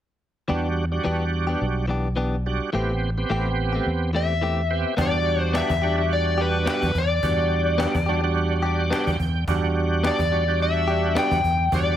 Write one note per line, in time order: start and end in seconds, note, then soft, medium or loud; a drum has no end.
0.48 0.98 E2 medium
0.48 0.66 E3 medium
0.48 0.85 G3 medium
0.48 0.67 B3 medium
0.48 0.67 D4 medium
0.48 0.85 D4 medium
0.48 0.85 F#4 medium
0.48 0.67 G4 medium
0.92 1.86 G3 medium
0.92 1.86 D4 medium
0.92 1.86 F#4 medium
1.04 1.54 E2 medium
1.04 1.22 E3 medium
1.04 1.23 B3 medium
1.04 1.23 D4 medium
1.04 1.23 G4 medium
1.47 1.65 B3 soft
1.47 1.64 D4 soft
1.47 1.64 G4 medium
1.61 2.58 B1 medium
1.88 2.07 E3 medium
1.88 2.07 B3 medium
1.88 2.08 D4 soft
1.88 2.08 G4 medium
2.16 2.35 E3 medium
2.16 2.35 B3 medium
2.16 2.35 D4 medium
2.16 2.35 G4 medium
2.46 2.70 G3 medium
2.46 2.70 D4 medium
2.46 2.70 F#4 medium
2.73 3.22 A1 medium
2.73 2.91 E3 medium
2.73 2.92 A3 medium
2.73 3.10 B3 medium
2.73 2.92 C4 medium
2.73 3.10 C4 medium
2.73 3.10 G4 medium
2.73 2.92 G4 medium
3.18 4.11 B3 medium
3.18 4.11 C4 medium
3.18 4.11 G4 medium
3.30 3.79 A1 medium
3.30 3.48 E3 medium
3.30 3.48 A3 medium
3.30 3.48 C4 medium
3.30 3.49 G4 medium
3.73 3.90 A3 soft
3.73 3.90 C4 soft
3.73 3.89 G4 medium
3.86 4.83 E2 medium
4.13 4.32 E3 soft
4.13 4.32 A3 medium
4.13 4.33 C4 medium
4.13 4.33 G4 medium
4.13 5.02 E5 medium
4.41 4.60 E3 medium
4.41 4.60 A3 medium
4.41 4.61 C4 medium
4.41 4.61 G4 medium
4.70 4.95 B3 medium
4.70 4.95 C4 medium
4.70 4.95 G4 medium
4.97 5.60 E2 medium
4.97 5.71 G3 medium
4.97 5.16 B3 medium
4.97 5.16 D4 medium
4.97 5.71 D4 medium
4.97 5.71 F#4 medium
4.97 5.17 G4 medium
4.97 cajon bass loud
5.01 5.41 D5 loud
5.26 cajon slap soft
5.41 5.52 C5 loud
5.53 5.72 B3 medium
5.53 5.73 D4 medium
5.53 5.73 G4 medium
5.53 6.12 E5 medium
5.53 cajon slap loud
5.70 6.67 E2 medium
5.70 cajon bass medium
5.82 5.96 G3 medium
5.82 5.96 D4 medium
5.82 6.02 D4 soft
5.82 5.96 F#4 medium
5.82 6.00 G4 soft
5.82 cajon slap soft
5.98 6.91 G3 medium
5.98 6.91 D4 medium
5.98 6.92 F#4 medium
6.11 6.41 D5 medium
6.11 cajon slap soft
6.38 6.58 D4 soft
6.38 6.56 G4 medium
6.38 6.69 B4 medium
6.38 cajon slap soft
6.66 6.84 B3 medium
6.66 6.85 D4 medium
6.66 6.85 G4 medium
6.66 cajon slap loud
6.70 6.97 B4 medium
6.82 6.93 E2 medium
6.82 cajon bass medium
6.95 7.19 E2 medium
6.95 9.17 D5 medium
6.95 cajon bass medium
7.23 7.85 E2 medium
7.23 7.96 G3 medium
7.23 7.96 D4 medium
7.23 7.96 F#4 medium
7.23 cajon bass loud
7.51 cajon slap soft
7.78 7.97 B3 medium
7.78 7.97 D4 medium
7.78 7.98 G4 medium
7.78 cajon slap loud
7.95 8.91 E2 medium
7.95 cajon bass medium
8.06 8.21 G3 medium
8.06 8.21 D4 medium
8.06 8.26 D4 soft
8.06 8.21 F#4 medium
8.06 8.25 G4 medium
8.06 cajon slap soft
8.24 9.17 G3 medium
8.24 9.17 D4 medium
8.24 9.17 F#4 medium
8.36 cajon slap soft
8.62 8.82 D4 soft
8.62 8.81 G4 medium
8.62 8.90 D5 medium
8.62 cajon slap soft
8.90 9.09 B3 medium
8.90 9.09 D4 medium
8.90 9.10 G4 loud
8.90 9.44 G5 medium
8.90 cajon slap loud
9.07 9.18 E2 medium
9.07 cajon bass medium
9.20 9.44 E2 medium
9.20 cajon bass medium
9.47 10.09 E2 medium
9.47 10.20 G3 medium
9.47 10.20 D4 medium
9.47 10.20 F#4 medium
9.47 cajon bass loud
9.76 cajon slap soft
10.04 10.22 B3 medium
10.04 10.22 D4 medium
10.04 10.23 G4 medium
10.04 10.62 D5 medium
10.04 cajon slap medium
10.19 11.16 E2 medium
10.19 cajon bass medium
10.32 10.45 G3 medium
10.32 10.45 D4 medium
10.32 10.45 F#4 medium
10.32 cajon slap soft
10.48 11.41 G3 medium
10.48 11.41 D4 medium
10.48 11.41 F#4 medium
10.60 11.19 E5 medium
10.60 cajon slap soft
10.88 11.07 D4 soft
10.88 11.06 G4 medium
10.88 cajon slap soft
11.15 11.34 B3 medium
11.15 11.34 D4 medium
11.15 11.34 G4 medium
11.15 11.75 G5 loud
11.15 cajon slap loud
11.31 11.42 E2 medium
11.31 cajon bass medium
11.44 11.68 E2 medium
11.44 cajon bass medium
11.72 11.97 E2 medium
11.72 11.97 G3 medium
11.72 11.97 D4 medium
11.72 11.97 F#4 medium
11.72 11.97 D5 medium
11.72 cajon bass loud